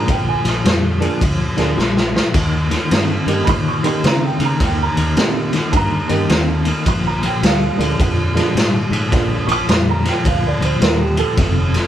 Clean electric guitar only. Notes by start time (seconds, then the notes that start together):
0.08 A#2 F3
0.44 A#2 F3
0.65 A#2 G3
1.01 A#2 F3
1.21 A#2 F3
1.57 A#2 F3
1.77 A#2 G3
2.14 A#2 F3
2.34 D#3 A#3
2.71 D#3 A#3
2.91 D#3 C4
3.27 D#3 A#3
3.47 D#3 A#3
3.83 D#3 A#3
4.04 D#3 C4
4.41 D#3 A#3
4.61 D#3 A#3
4.97 D#3 A#3
5.17 D#3 C4
5.53 D#3 A#3
5.73 D#3 A#3
6.09 D#3 A#3
6.30 D#3 C4
6.66 D#3 A#3
6.86 A#2 F3
7.23 A#2 F3
7.43 A#2 G3
7.79 A#2 F3
8.00 A#2 F3
8.36 A#2 F3
8.55 A#2 G3
8.92 A#2 F3
9.12 A#2 F3
9.48 A#2 F3
9.68 A#2 G3
10.04 A#2 F3
10.25 A#2 F3
10.61 A#2 F3
10.80 A#2 G3
11.17 A#2 F3
11.37 F2 C3
11.74 F2 C3